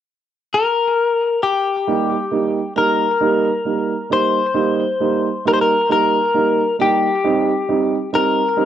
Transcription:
0.54 1.43 A#4 medium
1.43 2.73 G4 soft
1.87 2.13 G3 medium
1.87 2.13 A#3 soft
1.87 2.13 D#4 medium
2.31 2.57 G3 soft
2.31 2.57 A#3 soft
2.31 2.58 D#4 soft
2.76 3.02 G3 soft
2.76 3.02 A#3 soft
2.76 3.02 D#4 soft
2.76 4.12 A#4 soft
3.20 3.47 G3 medium
3.20 3.47 A#3 soft
3.20 3.47 D#4 medium
3.65 3.91 G3 soft
3.65 3.92 A#3 soft
3.65 3.92 D#4 soft
4.10 4.36 G3 soft
4.10 4.37 A#3 soft
4.10 4.37 D#4 soft
4.10 5.47 C5 medium
4.54 4.81 G3 medium
4.54 4.81 A#3 soft
4.54 4.81 D#4 medium
5.00 5.26 G3 soft
5.00 5.26 A#3 soft
5.00 5.26 D#4 soft
5.45 5.71 G3 soft
5.45 5.71 A#3 soft
5.45 5.71 D#4 medium
5.45 5.53 A#4 medium
5.54 5.59 C5 soft
5.61 5.91 A#4 soft
5.89 6.15 G3 medium
5.89 6.15 A#3 soft
5.89 6.15 D#4 medium
5.89 6.76 A#4 medium
6.34 6.60 G3 soft
6.34 6.60 A#3 soft
6.34 6.60 D#4 soft
6.79 7.04 G3 soft
6.79 7.05 A#3 soft
6.79 7.05 D#4 medium
6.79 8.10 G4 medium
7.24 7.49 G3 medium
7.24 7.50 C4 medium
7.24 7.50 D#4 medium
7.69 7.94 G3 soft
7.69 7.94 C4 soft
7.69 7.94 D#4 medium
8.13 8.38 G3 soft
8.13 8.38 C4 soft
8.13 8.38 D#4 medium
8.13 8.65 A#4 medium
8.57 8.65 G3 medium
8.57 8.65 C4 medium
8.57 8.65 D#4 medium

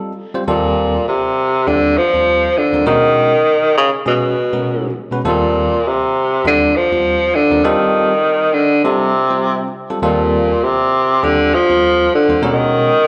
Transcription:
0.00 0.11 G3 medium
0.00 0.12 C4 soft
0.00 0.12 F4 medium
0.00 0.12 A4 medium
0.34 0.43 G3 medium
0.34 0.43 C4 medium
0.34 0.43 F4 medium
0.34 0.43 C5 medium
0.47 0.96 D#2 medium
0.47 1.04 A#2 medium
0.47 0.96 G3 medium
0.47 0.96 C4 medium
0.47 0.96 F4 medium
0.47 0.96 A4 medium
1.08 1.69 C3 medium
1.24 1.31 F4 soft
1.24 1.31 G4 soft
1.67 1.95 D#2 medium
1.67 1.99 D3 loud
1.67 1.95 G3 medium
1.67 1.95 C4 medium
1.67 1.96 F4 soft
1.67 1.96 G4 medium
1.98 2.59 F3 loud
2.13 2.50 D#2 soft
2.13 2.50 G3 soft
2.13 2.50 C4 medium
2.13 2.50 F4 soft
2.13 2.50 A4 medium
2.58 2.87 D3 medium
2.73 2.82 D#2 medium
2.73 2.82 G3 medium
2.73 2.82 C4 medium
2.73 2.82 F4 medium
2.73 2.82 A#4 medium
2.86 3.34 B2 medium
2.86 3.73 D#3 loud
2.86 3.34 G#3 medium
2.86 3.34 C#4 medium
2.86 3.34 F#4 medium
2.86 3.35 A#4 loud
3.62 3.69 F#4 soft
3.62 3.70 A#4 soft
3.77 3.90 C#3 medium
4.06 4.34 B2 medium
4.06 4.92 B2 medium
4.06 4.34 G#3 medium
4.06 4.34 C#4 medium
4.06 4.34 F#4 medium
4.06 4.34 G#4 medium
4.53 4.89 B2 medium
4.53 4.89 G#3 medium
4.53 4.89 C#4 medium
4.53 4.89 F#4 medium
4.53 4.89 A#4 medium
5.12 5.20 B2 medium
5.12 5.20 G#3 medium
5.12 5.21 C#4 medium
5.12 5.21 F#4 medium
5.12 5.21 B4 medium
5.25 5.73 D#2 medium
5.25 5.89 A#2 medium
5.25 5.73 G3 medium
5.25 5.73 C4 medium
5.25 5.73 F4 medium
5.25 5.73 A4 medium
5.88 6.46 C3 medium
6.01 6.08 F4 soft
6.01 6.09 A4 soft
6.45 6.73 D#2 medium
6.45 6.77 D3 medium
6.45 6.73 G3 medium
6.45 6.73 C4 medium
6.45 6.73 F4 medium
6.45 6.73 A4 medium
6.76 7.36 F3 medium
6.91 7.28 D#2 soft
6.91 7.28 G3 medium
6.91 7.28 C4 soft
6.91 7.28 F4 medium
6.91 7.28 C5 medium
7.35 7.66 D3 medium
7.51 7.59 D#2 medium
7.51 7.59 G3 medium
7.51 7.60 C4 medium
7.51 7.60 F4 medium
7.51 7.60 A#4 medium
7.64 8.55 D#3 medium
7.64 8.12 G3 medium
7.64 8.12 C4 medium
7.64 8.12 F4 medium
7.64 8.13 A4 medium
8.42 8.48 F4 soft
8.42 8.48 C5 soft
8.54 8.84 D3 medium
8.84 9.70 C3 medium
8.84 9.12 G3 medium
8.84 9.12 C4 medium
8.84 9.12 F4 medium
8.84 9.12 A4 medium
9.30 9.67 G3 medium
9.30 9.67 C4 soft
9.30 9.67 F4 soft
9.30 9.67 C5 medium
9.90 9.99 G3 medium
9.90 9.99 C4 medium
9.90 9.99 F4 medium
9.90 9.99 A4 medium
10.02 10.51 D#2 medium
10.02 10.65 A#2 medium
10.02 10.51 G3 medium
10.02 10.51 C4 medium
10.02 10.51 F4 medium
10.02 10.51 A4 medium
10.64 11.25 C3 medium
10.80 10.87 F4 soft
10.80 10.87 A4 soft
11.23 11.51 D#2 medium
11.23 11.56 D3 medium
11.23 11.51 G3 medium
11.23 11.52 C4 medium
11.23 11.52 F4 medium
11.23 11.52 G4 medium
11.54 12.14 F3 medium
11.69 12.06 D#2 medium
11.69 12.06 G3 medium
11.69 12.06 C4 medium
11.69 12.06 F4 soft
11.69 12.06 A4 medium
12.15 12.42 D3 medium
12.29 12.38 D#2 medium
12.29 12.38 G3 medium
12.29 12.38 C4 medium
12.29 12.38 F4 medium
12.29 12.38 C5 medium
12.42 12.91 B2 medium
12.42 13.07 D#3 medium
12.42 12.91 G#3 medium
12.42 12.91 C#4 medium
12.42 12.91 F#4 medium
12.42 12.91 A#4 loud

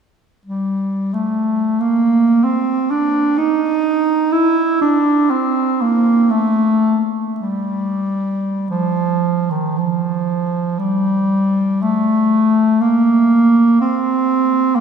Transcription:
0.46 1.16 G3 soft
1.14 1.82 A3 soft
1.80 2.45 A#3 soft
2.44 2.92 C4 medium
2.91 3.39 D4 medium
3.38 4.33 D#4 medium
4.32 4.81 E4 medium
4.81 5.32 D4 medium
5.31 5.83 C4 medium
5.81 6.32 A#3 medium
6.30 7.10 A3 medium
7.40 8.66 G3 soft
8.70 9.52 F3 medium
9.50 9.80 D#3 soft
9.78 10.80 F3 soft
10.79 11.83 G3 medium
11.82 12.83 A3 medium
12.81 13.80 A#3 medium
13.81 14.77 C4 medium
14.75 14.80 A#3 medium

